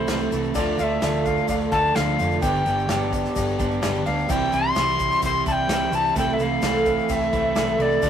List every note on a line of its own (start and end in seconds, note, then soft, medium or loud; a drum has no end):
0.00 0.31 C5 medium
0.07 0.27 C2 loud
0.07 0.54 C3 medium
0.07 0.54 E3 medium
0.07 0.54 A3 medium
0.07 0.55 C4 medium
0.07 0.40 E4 medium
0.07 0.55 E4 medium
0.07 0.40 A4 medium
0.07 0.55 A4 medium
0.07 0.40 C5 medium
0.07 snare loud
0.07 crash medium
0.07 shaker medium
0.20 shaker soft
0.32 0.50 C2 loud
0.32 0.55 A3 medium
0.32 0.54 C4 medium
0.32 0.54 E4 medium
0.32 crash medium
0.32 shaker medium
0.43 shaker soft
0.54 0.73 D2 medium
0.54 0.78 D3 medium
0.54 0.78 F3 medium
0.54 0.80 A3 medium
0.54 0.79 D4 medium
0.54 0.86 F4 loud
0.54 0.79 F4 medium
0.54 0.86 A4 loud
0.54 0.77 A4 loud
0.54 0.87 D5 loud
0.54 kick loud
0.54 crash medium
0.54 shaker loud
0.78 0.97 D2 medium
0.78 1.02 A3 medium
0.78 1.02 D4 soft
0.78 1.03 F4 medium
0.78 1.02 A4 medium
0.78 0.84 F5 medium
0.78 crash medium
0.78 shaker medium
0.83 1.28 E5 loud
1.01 1.39 D2 loud
1.01 1.94 D3 medium
1.01 1.25 F3 medium
1.01 1.74 A3 medium
1.01 1.26 D4 medium
1.01 1.17 F4 medium
1.01 1.26 F4 medium
1.01 1.18 A4 medium
1.01 1.24 A4 medium
1.01 1.18 D5 medium
1.01 snare loud
1.01 crash medium
1.01 shaker loud
1.25 1.49 D4 soft
1.25 1.41 F4 medium
1.25 1.49 F4 soft
1.25 1.41 A4 medium
1.25 1.49 A4 medium
1.25 1.41 F5 medium
1.25 1.49 F5 loud
1.25 kick medium
1.25 crash medium
1.25 shaker medium
1.37 shaker soft
1.48 1.67 D2 medium
1.48 1.95 D3 medium
1.48 1.94 F3 medium
1.48 1.94 D4 medium
1.48 1.80 F4 medium
1.48 1.95 F4 medium
1.48 1.80 A4 medium
1.48 1.95 A4 medium
1.48 1.80 D5 medium
1.48 1.55 F5 medium
1.48 kick medium
1.48 crash medium
1.48 shaker loud
1.72 1.90 D2 medium
1.72 1.95 A3 medium
1.72 1.96 D4 medium
1.72 1.96 F4 medium
1.72 1.97 A5 loud
1.72 kick medium
1.72 crash medium
1.95 2.14 D2 loud
1.95 2.40 D3 loud
1.95 2.42 F3 medium
1.95 2.20 A3 loud
1.95 2.42 D4 medium
1.95 2.27 F4 medium
1.95 2.43 F4 medium
1.95 2.27 A4 medium
1.95 2.43 A4 medium
1.95 2.27 C5 medium
1.95 2.41 F5 loud
1.95 snare loud
1.95 crash medium
1.95 shaker medium
2.19 2.38 F1 medium
2.19 2.42 A3 medium
2.19 2.41 D4 medium
2.19 2.41 F4 medium
2.19 crash medium
2.19 shaker medium
2.31 shaker soft
2.41 2.61 G1 medium
2.41 2.65 G2 medium
2.41 2.65 D3 medium
2.41 2.66 G3 medium
2.41 2.66 B3 medium
2.41 2.65 D4 medium
2.41 2.73 G4 medium
2.41 2.64 G4 loud
2.41 2.74 B4 medium
2.41 2.74 D5 loud
2.41 3.08 G5 loud
2.41 kick loud
2.41 crash medium
2.41 shaker loud
2.55 shaker soft
2.65 2.84 G1 loud
2.65 2.87 G3 soft
2.65 2.87 B3 soft
2.65 2.89 D4 medium
2.65 2.89 G4 medium
2.65 crash medium
2.65 shaker medium
2.79 shaker soft
2.88 3.25 G1 medium
2.88 3.12 G3 medium
2.88 3.12 B3 medium
2.88 3.12 D4 medium
2.88 3.05 G4 medium
2.88 3.10 G4 medium
2.88 3.05 B4 medium
2.88 3.05 D5 medium
2.88 snare loud
2.88 crash medium
2.88 shaker loud
3.11 3.35 G3 soft
3.11 3.35 B3 medium
3.11 3.36 D4 medium
3.11 3.35 G4 medium
3.11 3.28 G4 medium
3.11 3.28 B4 medium
3.11 3.28 D5 medium
3.11 kick medium
3.11 crash medium
3.11 shaker medium
3.25 snare soft
3.25 shaker soft
3.35 3.54 G1 medium
3.35 3.82 G2 loud
3.35 3.82 D3 medium
3.35 3.81 G3 loud
3.35 3.81 B3 loud
3.35 3.82 D4 medium
3.35 3.67 G4 medium
3.35 3.83 G4 medium
3.35 3.67 B4 medium
3.35 3.67 D5 loud
3.35 kick medium
3.35 crash medium
3.35 shaker loud
3.48 shaker soft
3.59 3.77 G1 medium
3.59 3.82 G3 medium
3.59 3.83 B3 medium
3.59 3.83 D4 medium
3.59 3.83 G4 medium
3.59 kick medium
3.59 crash medium
3.59 shaker medium
3.71 shaker soft
3.82 4.01 G1 medium
3.82 4.28 G2 medium
3.82 4.28 D3 medium
3.82 4.27 G3 medium
3.82 4.28 B3 medium
3.82 4.29 D4 medium
3.82 4.14 G4 medium
3.82 4.28 G4 medium
3.82 4.14 B4 medium
3.82 4.14 D5 loud
3.82 snare loud
3.82 crash medium
3.82 shaker loud
3.95 shaker soft
4.06 4.25 D2 medium
4.06 4.29 G3 medium
4.06 4.29 B3 medium
4.06 4.28 D4 medium
4.06 4.28 G4 medium
4.06 4.32 F5 loud
4.06 crash medium
4.18 shaker soft
4.28 4.48 C2 medium
4.28 4.52 C3 medium
4.28 4.76 E3 medium
4.28 4.52 G3 medium
4.28 4.52 C4 medium
4.28 4.53 E4 medium
4.28 4.60 G4 medium
4.28 4.51 G4 medium
4.28 4.60 C5 medium
4.28 4.60 E5 loud
4.28 4.56 G5 loud
4.28 kick loud
4.28 crash medium
4.28 shaker loud
4.52 4.71 C2 medium
4.52 4.76 G3 medium
4.52 4.74 C4 soft
4.52 4.75 E4 soft
4.52 4.76 G4 soft
4.52 5.23 C6 loud
4.52 crash medium
4.52 shaker medium
4.75 5.13 C2 loud
4.75 5.69 E3 medium
4.75 5.47 G3 medium
4.75 4.99 C4 medium
4.75 4.98 E4 medium
4.75 4.91 G4 medium
4.75 4.91 C5 medium
4.75 4.91 E5 medium
4.75 snare loud
4.75 crash medium
4.75 shaker loud
4.88 shaker soft
4.98 5.22 C4 soft
4.98 5.22 E4 medium
4.98 5.22 G4 medium
4.98 5.15 G4 medium
4.98 5.15 C5 medium
4.98 kick medium
4.98 crash medium
4.98 shaker medium
5.10 snare soft
5.10 shaker soft
5.22 5.41 C2 medium
5.22 5.69 C3 medium
5.22 5.68 G3 medium
5.22 5.69 C4 medium
5.22 5.70 E4 loud
5.22 5.54 G4 medium
5.22 5.70 G4 medium
5.22 5.54 C5 medium
5.22 5.54 E5 medium
5.22 5.45 C6 loud
5.22 kick medium
5.22 crash medium
5.22 shaker loud
5.46 5.64 C2 medium
5.46 5.70 G3 medium
5.46 5.70 C4 medium
5.46 5.71 E4 medium
5.46 5.53 A5 loud
5.46 kick medium
5.46 crash medium
5.46 shaker medium
5.52 5.96 G5 loud
5.68 5.87 C2 loud
5.68 6.15 C3 medium
5.68 6.15 E3 medium
5.68 6.16 G3 medium
5.68 6.16 C4 medium
5.68 6.16 E4 medium
5.68 6.00 G4 medium
5.68 6.17 G4 medium
5.68 6.00 C5 medium
5.68 6.01 G5 medium
5.68 snare loud
5.68 crash medium
5.68 shaker loud
5.92 6.10 C2 loud
5.92 6.16 G3 medium
5.92 6.15 C4 medium
5.92 6.14 E4 medium
5.92 6.17 A5 loud
5.92 crash medium
5.92 shaker medium
6.05 shaker soft
6.15 6.34 C2 loud
6.15 6.39 C3 medium
6.15 6.62 E3 medium
6.15 6.39 A3 medium
6.15 6.40 C4 medium
6.15 6.39 E4 medium
6.15 6.47 A4 loud
6.15 6.38 A4 medium
6.15 6.47 C5 medium
6.15 6.47 E5 loud
6.15 6.35 G5 loud
6.15 kick loud
6.15 crash medium
6.15 shaker loud
6.33 6.44 E5 medium
6.39 6.57 C2 medium
6.39 6.64 A3 medium
6.39 6.62 C4 soft
6.39 6.62 E4 soft
6.39 6.62 A4 medium
6.39 7.13 F5 loud
6.39 crash medium
6.39 shaker medium
6.61 6.99 C2 medium
6.61 7.55 E3 medium
6.61 6.86 A3 medium
6.61 6.86 C4 medium
6.61 6.86 E4 medium
6.61 6.78 A4 medium
6.61 6.84 A4 medium
6.61 6.78 C5 medium
6.61 6.78 D5 medium
6.61 snare loud
6.61 crash medium
6.61 shaker loud
6.75 shaker soft
6.85 7.09 C4 soft
6.85 7.09 E4 medium
6.85 7.01 A4 medium
6.85 7.09 A4 medium
6.85 7.02 E5 medium
6.85 kick medium
6.85 crash medium
6.85 shaker medium
6.98 shaker soft
7.09 7.28 C2 medium
7.09 7.56 C3 medium
7.09 7.54 A3 medium
7.09 7.55 C4 medium
7.09 7.55 E4 medium
7.09 7.41 A4 medium
7.09 7.57 A4 medium
7.09 7.41 C5 medium
7.09 7.83 E5 loud
7.09 7.41 G5 medium
7.09 kick medium
7.09 crash medium
7.09 shaker loud
7.21 shaker soft
7.33 7.51 C2 medium
7.33 7.56 A3 medium
7.33 7.56 C4 medium
7.33 7.57 E4 medium
7.33 kick medium
7.33 crash medium
7.33 shaker medium
7.55 7.74 C2 loud
7.55 8.01 C3 medium
7.55 8.01 E3 loud
7.55 8.02 A3 medium
7.55 8.03 C4 medium
7.55 8.03 E4 medium
7.55 7.87 A4 medium
7.55 8.03 A4 medium
7.55 7.87 C5 medium
7.55 7.87 D5 medium
7.55 snare loud
7.55 crash medium
7.55 shaker medium
7.67 shaker soft
7.79 7.97 C2 loud
7.79 8.02 A3 medium
7.79 8.02 C4 medium
7.79 8.01 E4 medium
7.79 8.10 D5 loud
7.79 crash medium
7.91 shaker soft
8.02 8.10 D2 medium
8.02 8.10 D3 medium
8.02 8.10 F3 medium
8.02 8.10 A3 medium
8.02 8.10 D4 medium
8.02 8.10 F4 medium
8.02 8.10 A4 medium
8.02 8.10 A4 loud
8.02 8.10 D5 loud
8.02 kick loud
8.02 crash medium
8.02 shaker loud